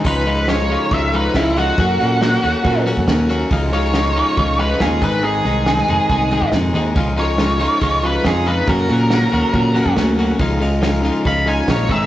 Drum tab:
CC |x---------------|----------------|--------------x-|----------------|
RD |--x-x-x-x-x-x-x-|x-x-x-x-x-x-x-x-|x-x-x-x-x-x-x---|--x-x-x-x-x-x-x-|
SD |----oo------o-o-|----oo------o-o-|----oo------o-o-|----oo------o-o-|
BD |o-------o---o---|o-------o--oo---|o-------o---o-o-|--------o--oo---|

CC |x---------------|----------------|----------------|
RD |--x-x-x-x-x-x-x-|x-x-x-x-x-x-x-x-|x-x-x-x-x-x-x-x-|
SD |----oo------o-o-|----oo------o---|----oo------o---|
BD |o-------o---o---|o-------o--oo---|o-------o---o-o-|